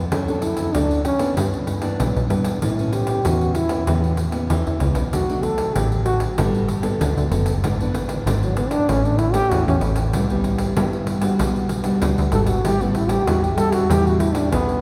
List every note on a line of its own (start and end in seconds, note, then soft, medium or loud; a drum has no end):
0.00 0.13 F2 loud
0.12 0.65 F#2 medium
0.12 0.72 F#3 medium
0.12 0.44 C#4 medium
0.12 0.23 C#4 medium
0.12 0.23 D4 medium
0.12 0.23 A4 medium
0.12 pandeiro medium
0.28 0.70 C#4 medium
0.28 0.70 D4 medium
0.28 0.70 A4 medium
0.28 pandeiro soft
0.42 0.76 E4 medium
0.42 pandeiro medium
0.57 pandeiro medium
0.74 1.28 D2 medium
0.74 1.19 F#3 medium
0.74 1.04 C#4 medium
0.74 1.04 D4 medium
0.74 1.04 A4 medium
0.74 pandeiro medium
0.91 pandeiro soft
1.05 1.35 C#4 medium
1.05 pandeiro medium
1.19 1.78 E3 medium
1.19 1.78 B3 medium
1.19 1.78 D4 medium
1.19 pandeiro medium
1.37 1.90 G2 loud
1.37 1.97 G2 medium
1.37 pandeiro medium
1.54 pandeiro soft
1.67 pandeiro medium
1.82 2.25 E3 medium
1.82 2.25 B3 medium
1.82 2.25 D4 medium
1.82 pandeiro medium
2.00 2.13 B1 medium
2.00 2.59 G2 medium
2.00 pandeiro medium
2.16 2.29 B1 loud
2.16 pandeiro soft
2.30 2.64 G2 loud
2.30 2.59 E3 medium
2.30 2.60 B3 medium
2.30 2.60 D4 medium
2.30 pandeiro medium
2.44 pandeiro medium
2.62 3.22 A2 medium
2.62 3.16 A2 medium
2.62 2.72 E3 medium
2.62 2.72 B3 medium
2.62 2.72 C#4 medium
2.62 2.95 E4 medium
2.62 pandeiro medium
2.79 3.20 E3 medium
2.79 3.21 B3 medium
2.79 3.21 C#4 medium
2.79 pandeiro soft
2.93 3.28 G4 medium
2.93 pandeiro medium
3.07 pandeiro medium
3.25 3.78 E2 loud
3.25 3.69 E3 medium
3.25 3.55 B3 soft
3.25 3.55 C#4 medium
3.25 3.58 F#4 loud
3.25 pandeiro medium
3.41 pandeiro soft
3.55 3.88 E4 loud
3.55 pandeiro medium
3.69 3.82 E3 medium
3.69 3.82 B3 medium
3.69 3.82 C#4 medium
3.69 pandeiro medium
3.87 4.41 E2 loud
3.87 4.47 A2 medium
3.87 4.17 E3 medium
3.87 4.17 B3 medium
3.87 4.18 C#4 medium
3.87 pandeiro medium
4.04 pandeiro soft
4.17 pandeiro medium
4.32 4.49 E3 medium
4.32 4.76 B3 medium
4.32 4.76 C#4 medium
4.32 pandeiro medium
4.50 4.64 E2 medium
4.50 4.80 E3 medium
4.50 pandeiro medium
4.67 4.80 E2 medium
4.67 pandeiro soft
4.80 4.95 C#2 loud
4.80 5.01 E3 medium
4.80 5.02 B3 medium
4.80 5.02 C#4 medium
4.80 pandeiro medium
4.95 5.13 B1 medium
4.95 pandeiro medium
5.13 5.67 B1 loud
5.13 5.73 B2 medium
5.13 5.23 F#3 medium
5.13 5.23 A3 medium
5.13 5.23 D4 medium
5.13 5.45 F#4 medium
5.13 pandeiro medium
5.29 5.71 F#3 medium
5.29 5.71 A3 medium
5.29 5.71 D4 medium
5.29 pandeiro soft
5.43 5.78 A4 medium
5.43 pandeiro soft
5.58 pandeiro medium
5.76 6.29 A1 loud
5.76 6.35 F#2 medium
5.76 6.16 A3 soft
5.76 6.17 D4 medium
5.76 6.05 G4 medium
5.76 pandeiro medium
5.92 pandeiro soft
6.06 6.25 F#4 medium
6.06 pandeiro medium
6.20 pandeiro medium
6.38 6.92 G1 loud
6.38 6.98 G3 medium
6.38 6.68 B3 medium
6.38 6.68 D4 medium
6.38 6.68 A4 medium
6.38 pandeiro medium
6.54 pandeiro soft
6.68 pandeiro medium
6.83 7.26 B3 medium
6.83 7.26 D4 medium
6.83 7.26 A4 medium
6.83 pandeiro medium
7.01 7.14 D2 medium
7.01 7.60 D3 medium
7.01 pandeiro medium
7.17 7.30 D2 loud
7.17 pandeiro soft
7.31 7.65 F#1 loud
7.31 7.52 B3 medium
7.31 7.52 D4 medium
7.31 7.52 A4 medium
7.31 pandeiro medium
7.46 pandeiro medium
7.63 8.17 G#1 loud
7.63 8.23 G#2 medium
7.63 7.75 E3 medium
7.63 7.75 B3 medium
7.63 7.75 D4 medium
7.63 pandeiro medium
7.80 8.22 E3 medium
7.80 8.22 B3 medium
7.80 8.22 D4 medium
7.80 pandeiro soft
7.94 pandeiro medium
8.09 pandeiro medium
8.26 8.79 G#1 medium
8.26 8.86 G#2 medium
8.26 8.84 E3 medium
8.26 8.84 B3 medium
8.26 8.84 D4 medium
8.26 pandeiro medium
8.43 8.58 F#3 medium
8.43 pandeiro soft
8.56 8.73 B3 loud
8.56 pandeiro medium
8.71 8.91 D4 loud
8.71 pandeiro medium
8.89 9.42 A1 loud
8.89 9.49 A2 medium
8.89 9.19 E3 medium
8.89 9.19 A3 medium
8.89 9.06 C#4 medium
8.89 9.19 C#4 medium
8.89 pandeiro medium
9.05 9.20 D4 medium
9.05 pandeiro soft
9.18 9.35 E4 loud
9.18 pandeiro medium
9.33 9.51 E3 medium
9.33 9.77 A3 medium
9.33 9.77 C#4 medium
9.33 9.53 G4 loud
9.33 pandeiro medium
9.51 9.65 E2 medium
9.51 9.81 E3 medium
9.51 9.67 F#4 loud
9.51 pandeiro medium
9.68 9.81 E2 loud
9.68 9.77 C#4 medium
9.68 pandeiro soft
9.81 10.16 A1 loud
9.81 10.11 E3 medium
9.81 10.12 A3 medium
9.81 10.12 C#4 medium
9.81 pandeiro medium
9.96 pandeiro medium
10.13 10.67 C2 loud
10.13 10.74 C3 medium
10.13 10.25 G3 medium
10.13 10.25 B3 medium
10.13 10.25 E4 medium
10.13 pandeiro medium
10.30 10.72 G3 medium
10.30 10.72 B3 medium
10.30 10.72 E4 medium
10.30 pandeiro soft
10.44 pandeiro soft
10.58 pandeiro medium
10.77 11.36 G2 medium
10.77 11.30 G2 loud
10.77 11.19 G3 medium
10.77 11.19 B3 medium
10.77 11.19 E4 medium
10.77 pandeiro medium
10.93 pandeiro soft
11.07 pandeiro medium
11.21 11.80 G3 medium
11.21 11.80 D4 medium
11.21 11.81 F#4 medium
11.21 pandeiro medium
11.39 11.93 B1 loud
11.39 11.99 B2 medium
11.39 pandeiro medium
11.56 pandeiro soft
11.69 pandeiro medium
11.84 12.27 G3 medium
11.84 12.27 D4 medium
11.84 12.27 F#4 medium
11.84 pandeiro medium
12.02 12.15 D2 loud
12.02 12.61 B2 medium
12.02 pandeiro medium
12.18 12.32 D2 loud
12.18 pandeiro soft
12.32 12.66 G#1 loud
12.32 12.53 G3 medium
12.32 12.53 D4 medium
12.32 12.53 F#4 medium
12.32 12.48 A4 loud
12.32 pandeiro medium
12.46 12.67 F#4 medium
12.46 pandeiro medium
12.64 13.18 A1 loud
12.64 13.24 A2 medium
12.64 12.75 G3 medium
12.64 12.76 C#4 medium
12.64 12.76 E4 medium
12.64 12.84 G4 loud
12.64 pandeiro medium
12.81 13.23 G3 medium
12.81 12.97 B3 medium
12.81 13.23 C#4 medium
12.81 13.23 E4 medium
12.81 pandeiro soft
12.95 13.12 E4 medium
12.95 pandeiro medium
13.09 13.29 G4 loud
13.09 pandeiro medium
13.27 13.80 E2 loud
13.27 13.87 E3 medium
13.27 13.46 G3 medium
13.27 13.46 C#4 medium
13.27 13.46 E4 medium
13.27 13.45 F#4 medium
13.27 pandeiro medium
13.43 13.59 G4 medium
13.43 pandeiro soft
13.57 13.84 G3 medium
13.57 13.84 C#4 medium
13.57 13.85 E4 medium
13.57 13.74 A4 loud
13.57 pandeiro medium
13.72 13.92 F#4 loud
13.72 pandeiro medium
13.90 14.43 E2 loud
13.90 14.49 A2 medium
13.90 14.32 G3 medium
13.90 14.32 C#4 medium
13.90 14.32 E4 medium
13.90 14.08 G4 loud
13.90 pandeiro medium
14.07 14.21 F#4 loud
14.07 pandeiro soft
14.20 14.36 E4 medium
14.20 pandeiro medium
14.34 14.78 G3 medium
14.34 14.78 C#4 medium
14.34 14.51 D4 medium
14.34 14.78 E4 medium
14.34 pandeiro medium
14.52 14.81 B1 medium
14.52 14.81 E3 medium
14.52 14.81 B3 loud
14.52 pandeiro medium
14.69 pandeiro soft